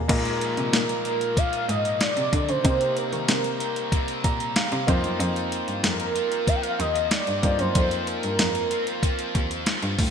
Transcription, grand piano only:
0, 0, Header, 1, 2, 480
1, 0, Start_track
1, 0, Tempo, 638298
1, 71, Time_signature, 4, 2, 24, 8
1, 7598, End_track
2, 0, Start_track
2, 0, Title_t, "Grand piano"
2, 0, Program_c, 0, 0
2, 0, Control_c, 0, 64, 127
2, 0, Note_on_c, 0, 58, 53
2, 0, Note_on_c, 0, 65, 49
2, 0, Note_on_c, 0, 68, 50
2, 0, Note_on_c, 0, 77, 69
2, 0, Note_on_c, 0, 80, 65
2, 62, Note_on_c, 0, 56, 80
2, 67, Note_off_c, 0, 58, 0
2, 67, Note_on_c, 0, 58, 74
2, 71, Note_on_c, 0, 46, 81
2, 71, Note_on_c, 0, 63, 70
2, 75, Note_off_c, 0, 65, 0
2, 75, Note_on_c, 0, 65, 72
2, 80, Control_c, 0, 64, 0
2, 80, Note_on_c, 0, 70, 89
2, 83, Note_off_c, 0, 80, 0
2, 86, Note_off_c, 0, 68, 0
2, 86, Note_off_c, 0, 77, 0
2, 201, Control_c, 0, 64, 127
2, 761, Note_off_c, 0, 46, 0
2, 1956, Note_off_c, 0, 56, 0
2, 1959, Note_off_c, 0, 58, 0
2, 1961, Note_off_c, 0, 63, 0
2, 1963, Note_off_c, 0, 65, 0
2, 1965, Note_off_c, 0, 70, 0
2, 1982, Note_on_c, 0, 58, 71
2, 1986, Note_on_c, 0, 60, 62
2, 1991, Note_on_c, 0, 48, 67
2, 1991, Note_on_c, 0, 63, 63
2, 1996, Note_on_c, 0, 67, 59
2, 1999, Control_c, 0, 64, 0
2, 1999, Note_on_c, 0, 72, 76
2, 2120, Control_c, 0, 64, 127
2, 2681, Note_off_c, 0, 48, 0
2, 3190, Note_on_c, 0, 82, 72
2, 3413, Note_off_c, 0, 82, 0
2, 3431, Note_on_c, 0, 77, 78
2, 3636, Note_off_c, 0, 58, 0
2, 3638, Note_off_c, 0, 60, 0
2, 3641, Note_off_c, 0, 63, 0
2, 3643, Note_off_c, 0, 67, 0
2, 3645, Note_off_c, 0, 72, 0
2, 3661, Note_on_c, 0, 58, 78
2, 3666, Note_on_c, 0, 60, 79
2, 3670, Note_on_c, 0, 63, 73
2, 3675, Note_on_c, 0, 65, 74
2, 3679, Note_on_c, 0, 72, 92
2, 3680, Control_c, 0, 64, 0
2, 3825, Control_c, 0, 64, 127
2, 3880, Note_off_c, 0, 77, 0
2, 5556, Note_off_c, 0, 58, 0
2, 5558, Note_off_c, 0, 60, 0
2, 5560, Note_off_c, 0, 63, 0
2, 5563, Note_off_c, 0, 65, 0
2, 5565, Note_off_c, 0, 72, 0
2, 5583, Note_on_c, 0, 58, 66
2, 5587, Note_on_c, 0, 60, 66
2, 5591, Note_on_c, 0, 63, 62
2, 5596, Note_on_c, 0, 65, 64
2, 5601, Note_on_c, 0, 72, 72
2, 7477, Note_off_c, 0, 58, 0
2, 7479, Note_off_c, 0, 60, 0
2, 7481, Note_off_c, 0, 63, 0
2, 7483, Note_off_c, 0, 65, 0
2, 7486, Note_off_c, 0, 72, 0
2, 7598, End_track
0, 0, End_of_file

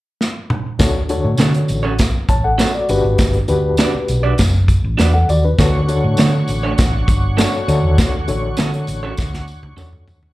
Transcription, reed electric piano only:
0, 0, Header, 1, 2, 480
1, 0, Start_track
1, 0, Key_signature, 2, "major"
1, 0, Tempo, 598205
1, 641, Time_signature, 4, 2, 24, 8
1, 8290, End_track
2, 0, Start_track
2, 0, Title_t, "Reed electric piano"
2, 0, Program_c, 0, 4
2, 634, Note_on_c, 0, 62, 80
2, 637, Note_on_c, 0, 50, 70
2, 639, Note_on_c, 0, 66, 70
2, 642, Note_on_c, 0, 69, 78
2, 643, Note_on_c, 0, 73, 90
2, 804, Note_off_c, 0, 62, 0
2, 806, Note_off_c, 0, 66, 0
2, 808, Note_off_c, 0, 69, 0
2, 808, Note_off_c, 0, 73, 0
2, 879, Note_on_c, 0, 62, 78
2, 880, Note_on_c, 0, 66, 68
2, 886, Note_on_c, 0, 69, 73
2, 886, Note_on_c, 0, 73, 89
2, 1326, Note_off_c, 0, 50, 0
2, 1544, Note_off_c, 0, 62, 0
2, 1544, Note_off_c, 0, 66, 0
2, 1547, Note_off_c, 0, 73, 0
2, 1548, Note_off_c, 0, 69, 0
2, 1838, Note_on_c, 0, 81, 57
2, 1843, Note_on_c, 0, 73, 52
2, 1953, Note_off_c, 0, 81, 0
2, 1956, Note_off_c, 0, 73, 0
2, 1960, Note_on_c, 0, 78, 61
2, 1965, Note_on_c, 0, 69, 53
2, 2188, Note_off_c, 0, 78, 0
2, 2190, Note_off_c, 0, 69, 0
2, 2203, Note_on_c, 0, 74, 57
2, 2206, Note_on_c, 0, 66, 51
2, 2311, Note_off_c, 0, 66, 0
2, 2320, Note_on_c, 0, 66, 79
2, 2321, Note_on_c, 0, 62, 84
2, 2324, Note_on_c, 0, 43, 69
2, 2327, Note_on_c, 0, 67, 77
2, 2329, Note_on_c, 0, 71, 88
2, 2430, Note_off_c, 0, 74, 0
2, 2704, Note_off_c, 0, 66, 0
2, 2705, Note_off_c, 0, 62, 0
2, 2708, Note_off_c, 0, 67, 0
2, 2709, Note_off_c, 0, 71, 0
2, 2794, Note_on_c, 0, 62, 76
2, 2794, Note_on_c, 0, 66, 73
2, 2797, Note_on_c, 0, 67, 73
2, 2800, Note_on_c, 0, 71, 92
2, 3011, Note_off_c, 0, 43, 0
2, 3462, Note_off_c, 0, 62, 0
2, 3463, Note_off_c, 0, 66, 0
2, 3464, Note_off_c, 0, 67, 0
2, 3465, Note_off_c, 0, 71, 0
2, 4123, Note_on_c, 0, 78, 59
2, 4131, Note_on_c, 0, 69, 51
2, 4236, Note_off_c, 0, 78, 0
2, 4241, Note_off_c, 0, 69, 0
2, 4250, Note_on_c, 0, 74, 68
2, 4258, Note_on_c, 0, 66, 57
2, 4361, Note_off_c, 0, 74, 0
2, 4365, Note_off_c, 0, 66, 0
2, 4370, Note_on_c, 0, 71, 57
2, 4371, Note_on_c, 0, 62, 49
2, 4473, Note_off_c, 0, 62, 0
2, 4483, Note_on_c, 0, 62, 85
2, 4486, Note_on_c, 0, 50, 71
2, 4486, Note_on_c, 0, 66, 79
2, 4488, Note_on_c, 0, 69, 77
2, 4490, Note_on_c, 0, 73, 90
2, 4595, Note_off_c, 0, 71, 0
2, 4649, Note_off_c, 0, 62, 0
2, 4651, Note_off_c, 0, 66, 0
2, 4652, Note_off_c, 0, 69, 0
2, 4653, Note_off_c, 0, 73, 0
2, 4717, Note_on_c, 0, 62, 73
2, 4721, Note_on_c, 0, 66, 72
2, 4726, Note_on_c, 0, 69, 74
2, 4729, Note_on_c, 0, 73, 87
2, 5173, Note_off_c, 0, 50, 0
2, 5386, Note_off_c, 0, 62, 0
2, 5388, Note_off_c, 0, 66, 0
2, 5390, Note_off_c, 0, 69, 0
2, 5391, Note_off_c, 0, 73, 0
2, 5919, Note_on_c, 0, 62, 65
2, 5924, Note_on_c, 0, 66, 66
2, 5924, Note_on_c, 0, 69, 70
2, 5928, Note_on_c, 0, 73, 83
2, 6154, Note_off_c, 0, 62, 0
2, 6154, Note_off_c, 0, 66, 0
2, 6161, Note_off_c, 0, 69, 0
2, 6162, Note_off_c, 0, 73, 0
2, 6163, Note_on_c, 0, 66, 77
2, 6164, Note_on_c, 0, 62, 81
2, 6170, Note_on_c, 0, 69, 76
2, 6171, Note_on_c, 0, 50, 70
2, 6172, Note_on_c, 0, 73, 90
2, 6548, Note_off_c, 0, 66, 0
2, 6549, Note_off_c, 0, 62, 0
2, 6552, Note_off_c, 0, 69, 0
2, 6553, Note_off_c, 0, 73, 0
2, 6643, Note_on_c, 0, 62, 80
2, 6645, Note_on_c, 0, 66, 68
2, 6649, Note_on_c, 0, 69, 73
2, 6651, Note_on_c, 0, 73, 85
2, 6856, Note_off_c, 0, 50, 0
2, 7309, Note_off_c, 0, 62, 0
2, 7310, Note_off_c, 0, 66, 0
2, 7312, Note_off_c, 0, 69, 0
2, 7313, Note_off_c, 0, 73, 0
2, 7836, Note_on_c, 0, 62, 69
2, 7840, Note_on_c, 0, 66, 65
2, 7847, Note_on_c, 0, 69, 62
2, 7850, Note_on_c, 0, 73, 74
2, 8173, Note_off_c, 0, 62, 0
2, 8174, Note_off_c, 0, 66, 0
2, 8178, Note_off_c, 0, 69, 0
2, 8179, Note_off_c, 0, 73, 0
2, 8290, End_track
0, 0, End_of_file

